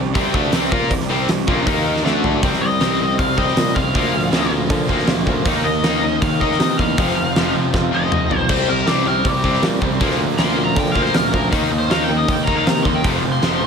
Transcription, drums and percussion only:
0.15 kick loud
0.15 open hi-hat medium
0.34 kick loud
0.52 snare loud
0.52 open hi-hat medium
0.72 kick loud
0.91 kick medium
0.91 open hi-hat medium
1.00 snare soft
1.29 snare loud
1.29 open hi-hat medium
1.48 kick loud
1.67 kick loud
1.67 open hi-hat medium
1.96 snare soft
2.06 snare medium
2.24 floor tom medium
2.43 kick loud
2.43 open hi-hat medium
2.53 snare soft
2.81 snare medium
2.81 open hi-hat soft
3.19 kick loud
3.19 open hi-hat medium
3.38 kick medium
3.48 snare soft
3.57 snare loud
3.57 open hi-hat medium
3.76 kick medium
3.95 kick loud
3.95 open hi-hat medium
4.33 snare medium
4.33 open hi-hat medium
4.70 kick loud
4.70 open hi-hat medium
4.89 kick medium
4.99 snare soft
5.07 snare loud
5.07 open hi-hat medium
5.27 kick medium
5.45 kick loud
5.45 open hi-hat medium
5.84 snare loud
5.84 open hi-hat soft
6.22 kick loud
6.22 open hi-hat medium
6.41 kick medium
6.52 snare soft
6.60 snare loud
6.60 open hi-hat medium
6.79 kick medium
6.98 kick loud
6.98 open hi-hat medium
7.09 snare soft
7.36 snare loud
7.36 open hi-hat medium
7.74 kick loud
7.74 snare medium
8.12 mid tom loud
8.31 floor tom medium
8.49 kick loud
8.49 crash loud
8.87 snare medium
8.87 open hi-hat soft
9.25 kick loud
9.25 open hi-hat medium
9.44 kick medium
9.54 snare soft
9.63 snare loud
9.63 open hi-hat medium
9.82 kick medium
10.01 kick loud
10.01 open hi-hat medium
10.10 snare soft
10.38 snare loud
10.38 open hi-hat medium
10.76 kick loud
10.76 open hi-hat medium
10.95 kick medium
11.05 snare soft
11.14 snare loud
11.14 open hi-hat medium
11.34 kick medium
11.52 kick loud
11.52 open hi-hat medium
11.91 snare loud
11.91 open hi-hat medium
12.28 kick loud
12.28 open hi-hat medium
12.47 kick medium
12.67 snare loud
12.67 open hi-hat medium
12.85 kick medium
13.04 kick loud
13.04 open hi-hat medium
13.42 snare loud
13.42 open hi-hat soft

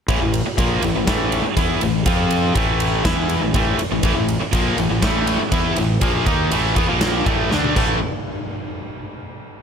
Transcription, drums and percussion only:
0.08 kick loud
0.08 ride medium
0.34 ride medium
0.58 kick loud
0.58 ride medium
0.82 ride medium
1.07 kick loud
1.07 snare loud
1.07 ride loud
1.32 ride medium
1.57 kick loud
1.57 snare soft
1.57 ride medium
1.81 ride medium
2.06 kick loud
2.06 ride loud
2.31 ride medium
2.55 kick loud
2.55 ride medium
2.80 ride medium
3.05 kick loud
3.05 snare loud
3.05 ride medium
3.29 ride medium
3.54 kick loud
3.54 ride medium
3.79 ride medium
4.03 kick loud
4.03 ride medium
4.28 ride medium
4.53 kick loud
4.53 ride loud
4.78 ride medium
5.02 kick loud
5.02 snare loud
5.02 ride loud
5.27 ride medium
5.52 kick loud
5.52 ride loud
5.76 ride medium
6.01 kick loud
6.01 ride loud
6.26 kick loud
6.26 ride medium
6.51 ride loud
6.76 kick loud
6.76 ride medium
7.01 snare loud
7.01 ride medium
7.26 kick loud
7.26 ride medium
7.51 snare medium
7.64 high tom medium
7.76 kick loud
7.76 crash medium

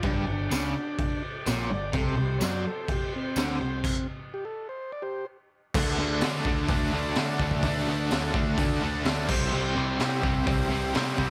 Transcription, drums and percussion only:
0.03 kick loud
0.03 crash medium
0.51 snare loud
0.51 tambourine medium
0.51 crash medium
0.99 kick loud
0.99 crash medium
1.46 snare loud
1.46 tambourine medium
1.46 crash medium
1.93 kick loud
1.93 crash medium
2.41 snare loud
2.41 tambourine loud
2.41 crash medium
2.88 kick loud
2.88 crash medium
3.36 snare loud
3.36 tambourine loud
3.36 crash medium
3.84 kick loud
3.84 crash loud
5.74 kick loud
5.74 crash loud
6.21 snare loud
6.21 open hi-hat medium
6.45 kick loud
6.68 kick loud
6.68 open hi-hat medium
7.15 snare loud
7.15 open hi-hat medium
7.40 kick medium
7.51 kick medium
7.63 kick loud
7.63 open hi-hat medium
8.11 snare loud
8.11 open hi-hat medium
8.34 kick loud
8.58 kick loud
8.58 open hi-hat medium
9.05 snare loud
9.05 open hi-hat medium
9.29 kick loud
9.29 crash loud
9.99 snare loud
9.99 open hi-hat medium
10.23 kick medium
10.47 kick loud
10.47 open hi-hat medium
10.94 snare loud
10.94 open hi-hat medium
11.18 kick medium

